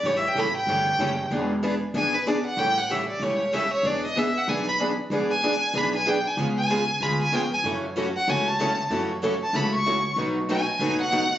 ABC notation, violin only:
X:1
M:4/4
L:1/8
Q:"Swing" 1/4=190
K:Emix
V:1 name="Violin"
(3c e =g b g4- g | z4 g B d f | =g f e d c2 e c | d ^d e f g b z2 |
z g3 b g =g ^g | z g3 b g =g ^g | z3 f g a3 | z3 a b c'3 |
z2 g3 f3 |]